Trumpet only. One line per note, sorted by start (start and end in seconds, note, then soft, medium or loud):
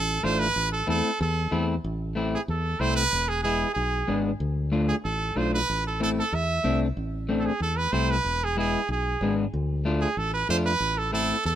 0.00 0.25 A4 loud
0.24 0.41 C5 medium
0.39 0.71 B4 loud
0.72 0.87 A4 medium
0.90 1.19 A4 medium
1.22 1.65 A4 medium
2.35 2.41 G#4 medium
2.50 2.82 A4 medium
2.80 2.95 C5 medium
2.96 3.30 B4 loud
3.28 3.42 G#4 medium
3.43 3.73 G#4 medium
3.74 4.19 G#4 medium
4.89 4.96 G#4 medium
5.04 5.39 A4 medium
5.37 5.53 C5 medium
5.54 5.83 B4 medium
5.87 6.01 A4 medium
6.03 6.10 A4 medium
6.19 6.36 A4 medium
6.34 6.82 E5 medium
7.39 7.47 A4 medium
7.45 7.61 G#4 medium
7.62 7.78 A4 medium
7.77 7.94 B4 medium
7.92 8.12 C5 medium
8.10 8.45 B4 loud
8.44 8.58 G#4 medium
8.59 8.87 G#4 medium
8.92 9.35 G#4 medium
10.01 10.19 G#4 medium
10.17 10.33 A4 medium
10.34 10.48 B4 medium
10.50 10.57 C5 medium
10.66 10.99 B4 loud
10.98 11.13 A4 medium
11.13 11.43 A4 medium
11.46 11.55 A4 medium